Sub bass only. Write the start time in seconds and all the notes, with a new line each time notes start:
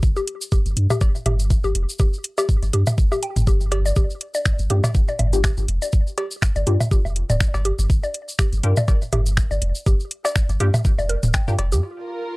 0.03 G1
0.66 G1
0.77 G2
1.26 G1
1.64 G1
1.75 F1
2.63 G1
2.73 G2
3.36 G1
3.96 G1
4.59 G1
4.70 G2
5.19 G1
5.58 G1
5.68 F1
6.56 G1
6.67 G2
7.05 F1
7.30 D1
7.54 G1
7.79 G1
7.90 G1
8.53 G1
8.63 G2
9.13 G1
9.51 G1
9.62 F1
10.49 G1
10.60 G2
10.98 F1
11.23 D1
11.48 G2
11.59 F1
11.72 G2